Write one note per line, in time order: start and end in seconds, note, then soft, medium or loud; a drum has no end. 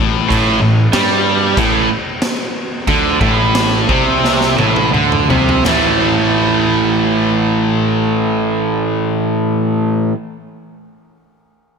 0.00 0.28 A1 loud
0.00 0.29 A2 loud
0.30 0.60 A1 medium
0.30 0.61 A2 loud
0.30 kick loud
0.30 crash medium
0.62 0.91 A1 medium
0.62 0.87 A2 medium
0.93 1.53 G2 loud
0.93 1.56 G3 loud
0.93 snare loud
0.93 crash medium
1.57 1.87 A1 loud
1.57 1.89 A2 loud
1.57 kick loud
1.57 crash medium
2.22 snare loud
2.22 crash medium
2.87 3.18 D2 medium
2.87 3.21 D3 loud
2.87 kick loud
2.87 crash medium
3.21 3.85 A1 medium
3.21 3.89 A2 medium
3.21 kick loud
3.55 snare loud
3.55 crash medium
3.89 4.55 C2 medium
3.89 4.58 C3 loud
3.89 kick loud
4.24 snare medium
4.41 snare medium
4.58 4.92 A1 loud
4.58 4.91 A2 loud
4.58 high tom medium
4.76 high tom medium
4.92 5.27 D2 loud
4.92 5.28 D3 medium
4.92 mid tom medium
5.12 mid tom medium
5.29 5.64 C2 loud
5.29 5.64 C3 loud
5.29 floor tom loud
5.49 floor tom loud
5.65 10.10 A1 loud
5.65 10.13 A2 loud
5.65 10.14 E3 loud
5.65 10.15 A3 loud
5.65 snare medium
5.65 floor tom medium
5.65 ride bell medium